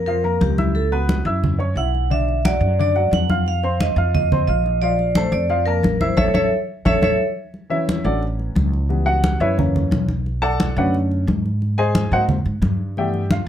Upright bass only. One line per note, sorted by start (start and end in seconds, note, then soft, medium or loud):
0.00 0.37 F2 medium
0.41 1.20 C#2 medium
1.25 1.73 F#2 loud
1.76 2.55 B1 medium
2.61 3.08 F#2 medium
3.11 3.91 F2 medium
3.96 4.44 F2 medium
4.48 5.27 A#1 medium
5.32 5.80 F2 loud
5.83 6.15 A1 medium
6.17 6.30 A1 loud
6.34 6.47 A1 medium
6.85 6.98 A1 loud
7.02 7.15 A1 medium
8.04 8.52 A1 medium
8.55 9.35 C#2 medium
9.40 9.88 F#2 medium
9.91 10.70 B1 medium
10.76 11.24 F#2 medium
11.27 12.06 G#2 medium
12.11 12.43 G#2 medium
12.46 12.61 G#2 medium
12.62 13.41 G2 medium